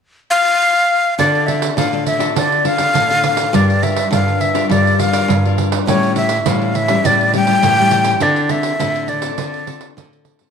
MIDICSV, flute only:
0, 0, Header, 1, 2, 480
1, 0, Start_track
1, 0, Key_signature, -1, "minor"
1, 0, Tempo, 585938
1, 974, Time_signature, 4, 2, 24, 8
1, 8603, End_track
2, 0, Start_track
2, 0, Title_t, "Flute"
2, 0, Program_c, 0, 73
2, 250, Note_on_c, 0, 77, 126
2, 940, Note_off_c, 0, 77, 0
2, 973, Note_on_c, 0, 74, 100
2, 1199, Note_on_c, 0, 76, 87
2, 1211, Note_off_c, 0, 74, 0
2, 1445, Note_off_c, 0, 76, 0
2, 1450, Note_on_c, 0, 77, 90
2, 1676, Note_off_c, 0, 77, 0
2, 1693, Note_on_c, 0, 76, 78
2, 1918, Note_off_c, 0, 76, 0
2, 1945, Note_on_c, 0, 74, 93
2, 2174, Note_on_c, 0, 77, 113
2, 2186, Note_off_c, 0, 74, 0
2, 2907, Note_on_c, 0, 74, 90
2, 2920, Note_off_c, 0, 77, 0
2, 3138, Note_on_c, 0, 76, 86
2, 3150, Note_off_c, 0, 74, 0
2, 3376, Note_off_c, 0, 76, 0
2, 3380, Note_on_c, 0, 77, 88
2, 3611, Note_on_c, 0, 76, 79
2, 3623, Note_off_c, 0, 77, 0
2, 3848, Note_off_c, 0, 76, 0
2, 3853, Note_on_c, 0, 74, 93
2, 4092, Note_on_c, 0, 77, 92
2, 4105, Note_off_c, 0, 74, 0
2, 4594, Note_off_c, 0, 77, 0
2, 4810, Note_on_c, 0, 73, 91
2, 5036, Note_off_c, 0, 73, 0
2, 5049, Note_on_c, 0, 76, 89
2, 5308, Note_on_c, 0, 77, 83
2, 5320, Note_off_c, 0, 76, 0
2, 5536, Note_on_c, 0, 76, 90
2, 5548, Note_off_c, 0, 77, 0
2, 5781, Note_on_c, 0, 74, 105
2, 5794, Note_off_c, 0, 76, 0
2, 6018, Note_off_c, 0, 74, 0
2, 6026, Note_on_c, 0, 79, 111
2, 6737, Note_on_c, 0, 74, 91
2, 6749, Note_off_c, 0, 79, 0
2, 6969, Note_on_c, 0, 76, 94
2, 6982, Note_off_c, 0, 74, 0
2, 7445, Note_on_c, 0, 74, 75
2, 7458, Note_off_c, 0, 76, 0
2, 8410, Note_off_c, 0, 74, 0
2, 8603, End_track
0, 0, End_of_file